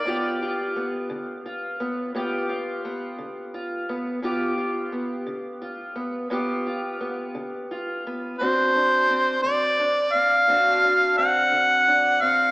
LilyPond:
<<
  \new Staff \with { instrumentName = "Harmonica" } { \time 12/8 \key g \mixolydian \tempo 4. = 58 d''8 r1 r4. | r1. | c''4. d''4 f''4. fis''4. f''8 | }
  \new Staff \with { instrumentName = "Steel-string acoustic guitar" } { \time 12/8 \key g \mixolydian << { <b f' g'>8 f'8 b4 f'8 b8 <b f' g'>8 f'8 b4 f'8 b8 | <b f' g'>8 f'8 b4 f'8 b8 <b f' g'>8 f'8 b4 f'8 b8 | <c' d' fis'>8 d'8 c'4 d'8 c'8 <c' d' fis'>8 d'8 c'4 d'8 c'8 | } \\ { g,4 r8 d4 r8 g,4 r8 d4 r8 | g,4 r8 d4 r8 g,4 r8 d4 r8 | d,4 r8 d4 r8 d,4 r8 d4 r8 | } >> }
>>